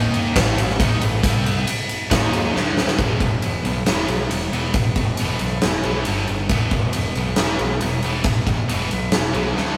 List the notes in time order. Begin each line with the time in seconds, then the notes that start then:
Already playing: D#2 D#3 A#3 D#4
0.14 ride
0.34 A1 A2 A3, kick, snare, ride
0.58 A1 A2 E3, ride
0.70 snare
0.79 D#2 D#3 A#3 D#4, kick, ride
1.01 A1 A2 E3, ride
1.23 C2 C3 G3 C4, kick, ride
1.46 ride
1.67 ride
1.89 ride
2.10 D#2 D#3 A#3 D#4, kick, snare, ride
2.33 ride
2.55 D2 D3 A3 D4, snare
2.77 snare
2.87 snare
2.98 E1 E2 B2 E3, kick, ride
3.20 E1 E2 B2, kick, ride
3.42 E1 E2 B2, ride
3.64 B1 E2 B2, ride
3.86 E1 E2 B2 E3, snare, ride
4.08 B1 E2 B2, ride
4.29 E1 E2 B2, ride
4.52 E1 E2 B2 E3, ride
4.74 E1 E2 B2, kick, ride
4.96 E1 E2 B2, kick, ride
5.17 E1 E2 B2 E3, ride
5.39 B1 E2 B2, ride
5.62 E1 E2 B2, snare, ride
5.83 B1 E2 B2 E3, ride
6.05 G1 G2 D3 G3, ride
6.27 G1 G2 D3, ride
6.49 E1 E2 B2 E3, kick, ride
6.71 E1 E2 B2, kick, ride
6.93 E1 E2 B2, ride
7.15 B1 E2 B2, ride
7.36 E1 E2 B2 E3, snare, ride
7.59 B1 E2 B2, ride
7.81 E1 E2 B2, ride
8.03 E1 E2 B2 E3, ride
8.24 E1 E2 B2, kick, ride
8.46 E1 E2 B2, kick, ride
8.69 E1 E2 B2 E3, ride
8.89 B1 E2 B2, ride
9.12 E1 E2 B2, snare, ride
9.33 B1 E2 B2 E3, ride
9.56 D2 D3 A3 D4, snare